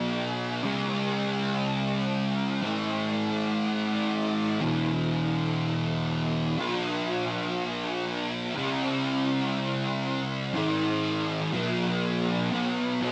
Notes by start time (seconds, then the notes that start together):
Already playing: B2 F#3 B3
0.63 C#3 G#3 C#4
2.63 A2 E3 A3
4.60 E2 B2 E3
6.58 B2 F#3 B3
8.56 C#3 G#3 C#4
10.54 A2 E3 A3
11.52 B2 F#3 B3
12.52 B2 F#3 B3
13.01 B2 F#3 B3